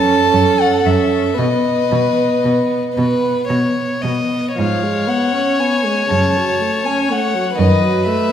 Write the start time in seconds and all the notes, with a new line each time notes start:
Already playing: C#4 A4 A5
0.31 F#2 C#4
0.61 F#5
0.84 F#2 C#4 E5
1.34 B2 B3 B4 D#5
1.90 B2 B3
2.43 B2 B3
2.94 B2 B3 B4
3.48 B2 B3 C#5
4.02 B2 B3 D#5
4.56 G#2 F3 C#5 F5
4.84 G#3
5.07 B3 F#5
5.34 C#4
5.60 B3 G#5
5.85 G#3
6.10 F#2 C#3 A5
6.37 F#3
6.61 A3
6.86 C#4 G#5
7.11 A3 F#5
7.34 F#3
7.56 F#2 D#3 B4 D#5
7.82 F#3
8.07 A3 E5